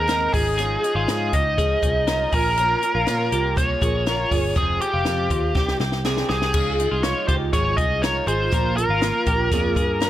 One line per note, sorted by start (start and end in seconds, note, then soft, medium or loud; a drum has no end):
0.00 0.26 D#2 medium
0.00 0.32 A#4 medium
0.08 0.33 G#2 medium
0.08 0.34 D#3 medium
0.08 0.34 G#3 medium
0.08 0.34 C4 medium
0.08 0.32 D#4 medium
0.08 0.34 A#4 medium
0.08 snare medium
0.08 closed hi-hat medium
0.33 0.76 G#1 medium
0.33 0.58 F3 soft
0.33 0.58 C#4 soft
0.33 0.58 D#4 soft
0.33 0.95 G#4 medium
0.33 0.57 G#4 medium
0.33 kick medium
0.33 open hi-hat medium
0.58 0.83 G#2 medium
0.58 0.84 F3 medium
0.58 0.83 C#4 medium
0.58 0.82 D#4 medium
0.58 0.93 G#4 medium
0.58 closed hi-hat medium
0.83 1.08 F3 soft
0.83 1.09 C#4 soft
0.83 1.08 D#4 soft
0.83 closed hi-hat soft
0.95 1.06 G#1 medium
0.95 1.33 F4 medium
0.95 1.34 G#4 loud
1.08 1.30 G#2 medium
1.08 1.34 G#2 medium
1.08 1.34 F3 medium
1.08 1.33 C#4 medium
1.08 1.32 D#4 medium
1.08 snare loud
1.08 closed hi-hat medium
1.33 1.75 C#2 medium
1.33 1.58 F3 soft
1.33 1.58 C#4 soft
1.33 1.58 D#4 medium
1.33 1.58 G4 medium
1.33 2.36 D#5 medium
1.33 kick medium
1.33 closed hi-hat medium
1.58 1.83 G#2 medium
1.58 1.84 F3 medium
1.58 1.83 C#4 medium
1.58 1.81 D#4 medium
1.58 1.82 G#4 medium
1.58 kick medium
1.58 closed hi-hat medium
1.82 2.25 C2 medium
1.82 2.07 F3 soft
1.82 2.07 C#4 medium
1.82 2.08 D#4 medium
1.82 2.07 G#4 medium
1.82 kick medium
1.82 closed hi-hat medium
2.07 2.33 G#2 medium
2.07 2.33 F3 medium
2.07 2.32 C#4 medium
2.07 2.33 D#4 medium
2.07 2.32 A#4 medium
2.07 snare medium
2.07 closed hi-hat medium
2.32 2.75 A#1 medium
2.32 2.57 A#3 soft
2.32 2.58 C#4 soft
2.32 2.57 F4 soft
2.32 2.58 G#4 medium
2.32 3.57 A#4 medium
2.32 kick loud
2.32 open hi-hat medium
2.57 2.82 A#2 medium
2.57 2.83 F3 medium
2.57 2.83 A#3 medium
2.57 2.82 C#4 medium
2.57 2.81 F4 medium
2.57 2.93 A#4 medium
2.57 closed hi-hat medium
2.82 3.07 A#3 soft
2.82 3.07 C#4 soft
2.82 3.07 F4 soft
2.82 closed hi-hat medium
2.95 3.06 A#1 medium
2.95 3.30 F4 medium
3.07 3.32 A#2 medium
3.07 3.29 A#2 medium
3.07 3.32 F3 medium
3.07 3.33 A#3 medium
3.07 3.32 C#4 medium
3.07 3.31 F4 loud
3.07 snare medium
3.07 closed hi-hat loud
3.32 3.74 C2 medium
3.32 3.56 A#3 soft
3.32 3.57 C#4 soft
3.32 3.57 F4 medium
3.32 3.57 G4 medium
3.32 closed hi-hat medium
3.56 3.81 F3 medium
3.56 3.82 A#3 medium
3.56 3.81 C#4 medium
3.56 3.80 F4 medium
3.56 3.81 G#4 medium
3.56 4.59 C#5 medium
3.56 kick loud
3.56 closed hi-hat medium
3.81 4.24 A#1 medium
3.81 4.06 A#3 soft
3.81 4.06 C#4 soft
3.81 4.06 F4 medium
3.81 4.07 G#4 medium
3.81 kick medium
3.81 closed hi-hat medium
4.06 4.31 A#2 medium
4.06 4.31 F3 medium
4.06 4.32 A#3 medium
4.06 4.32 C#4 medium
4.06 4.30 F4 medium
4.06 4.31 A#4 medium
4.06 snare loud
4.06 closed hi-hat medium
4.31 4.53 G1 medium
4.31 4.57 A#3 soft
4.31 4.57 C#4 medium
4.31 4.56 F4 medium
4.31 4.55 G#4 medium
4.31 kick medium
4.31 open hi-hat medium
4.56 4.77 F1 loud
4.56 4.81 F2 medium
4.56 4.81 C3 medium
4.56 4.81 F3 medium
4.56 4.81 G#3 medium
4.56 4.81 C4 medium
4.56 4.80 G4 medium
4.56 4.91 G#4 medium
4.56 4.81 G#4 medium
4.56 kick loud
4.56 closed hi-hat medium
4.81 5.05 F3 soft
4.81 5.05 G#3 soft
4.81 5.06 C4 soft
4.81 5.06 G4 soft
4.81 5.76 G4 medium
4.81 closed hi-hat medium
4.93 5.04 F1 medium
4.93 5.28 F4 medium
5.05 5.31 F2 medium
5.05 5.27 F2 medium
5.05 5.31 C3 medium
5.05 5.31 F3 medium
5.05 5.31 G#3 medium
5.05 5.30 C4 medium
5.05 5.29 G4 medium
5.05 snare loud
5.05 closed hi-hat medium
5.30 5.55 D#2 medium
5.30 5.54 F3 soft
5.30 5.56 G#3 soft
5.30 5.55 C4 soft
5.30 5.55 F4 medium
5.30 5.56 G4 soft
5.30 kick medium
5.30 closed hi-hat medium
5.55 5.76 C2 medium
5.55 5.80 G3 medium
5.55 5.81 C4 medium
5.55 5.79 E4 medium
5.55 5.79 G4 medium
5.55 5.78 G4 medium
5.55 kick loud
5.55 snare medium
5.68 snare medium
5.80 6.22 C2 medium
5.80 6.04 C4 soft
5.80 6.05 E4 medium
5.80 6.05 G4 medium
5.80 snare medium
5.92 snare medium
6.05 6.30 C3 medium
6.05 6.30 G3 medium
6.05 6.30 C4 medium
6.05 6.29 E4 medium
6.05 6.28 G4 medium
6.05 6.30 G#4 medium
6.05 snare medium
6.17 snare medium
6.29 6.51 C2 medium
6.29 6.54 C4 soft
6.29 6.55 E4 soft
6.29 6.54 G4 medium
6.29 7.06 G#4 medium
6.29 snare medium
6.42 snare medium
6.53 6.86 C#2 loud
6.53 6.79 C#3 medium
6.53 6.79 F3 medium
6.53 6.79 G#3 medium
6.53 6.79 D#4 medium
6.53 6.77 F4 medium
6.53 6.89 G#4 medium
6.53 kick loud
6.53 crash medium
6.79 7.03 G#3 soft
6.79 7.04 D#4 soft
6.79 7.04 F4 medium
6.79 closed hi-hat medium
6.91 7.13 C2 medium
6.91 7.27 F4 medium
7.03 7.28 F3 medium
7.03 7.29 G#3 medium
7.03 7.29 D#4 medium
7.03 7.27 F4 medium
7.03 7.27 C#5 medium
7.03 snare loud
7.03 closed hi-hat medium
7.28 7.50 C#2 medium
7.28 7.53 G#3 soft
7.28 7.53 D#4 soft
7.28 7.53 F4 soft
7.28 7.53 G4 medium
7.28 7.34 C5 medium
7.28 kick medium
7.28 closed hi-hat medium
7.53 7.74 G#1 loud
7.53 7.78 C#3 medium
7.53 7.78 F3 medium
7.53 7.78 G#3 medium
7.53 7.78 D#4 medium
7.53 7.76 F4 medium
7.53 7.76 G#4 medium
7.53 7.76 C#5 medium
7.53 kick loud
7.53 closed hi-hat medium
7.77 8.20 C2 medium
7.77 8.02 G#3 soft
7.77 8.03 D#4 medium
7.77 8.03 F4 medium
7.77 8.03 G#4 medium
7.77 8.03 D#5 loud
7.77 kick medium
7.77 closed hi-hat medium
8.02 8.28 F3 medium
8.02 8.28 G#3 medium
8.02 8.27 D#4 medium
8.02 8.26 F4 medium
8.02 8.27 A#4 medium
8.02 8.27 C#5 medium
8.02 snare medium
8.02 closed hi-hat medium
8.27 8.48 G#1 medium
8.27 8.52 G#3 soft
8.27 8.52 D#4 soft
8.27 8.52 F4 soft
8.27 8.53 G#4 medium
8.27 8.76 C5 medium
8.27 closed hi-hat medium
8.51 8.84 A#1 loud
8.51 8.77 A#2 medium
8.51 8.77 F3 medium
8.51 8.77 A#3 medium
8.51 8.76 C#4 medium
8.51 8.75 F4 medium
8.51 8.88 A#4 medium
8.51 kick loud
8.51 closed hi-hat medium
8.77 9.01 A#3 soft
8.77 9.01 C#4 soft
8.77 9.02 F4 soft
8.77 10.10 A#4 medium
8.77 closed hi-hat medium
8.89 9.10 G#1 medium
8.89 9.25 F4 medium
9.01 9.26 F3 medium
9.01 9.27 A#3 medium
9.01 9.26 C#4 medium
9.01 9.25 F4 medium
9.01 snare loud
9.01 closed hi-hat medium
9.26 9.48 A#1 medium
9.26 9.51 A#3 soft
9.26 9.51 C#4 medium
9.26 9.51 F4 medium
9.26 9.52 G4 medium
9.26 kick medium
9.26 closed hi-hat medium
9.52 9.73 F2 medium
9.52 9.76 A#2 medium
9.52 9.77 F3 loud
9.52 9.76 A#3 medium
9.52 9.75 C#4 medium
9.52 9.74 F4 medium
9.52 9.76 G#4 medium
9.52 kick loud
9.52 closed hi-hat medium
9.75 10.10 G2 medium
9.75 10.00 A#3 medium
9.75 10.01 C#4 medium
9.75 10.00 F4 medium
9.75 10.01 G#4 medium
9.75 kick medium
9.75 closed hi-hat medium
10.00 10.10 F3 medium
10.00 10.10 A#3 medium
10.00 10.10 C#4 medium
10.00 10.10 F4 medium
10.00 10.10 A#4 medium
10.00 snare medium
10.00 closed hi-hat medium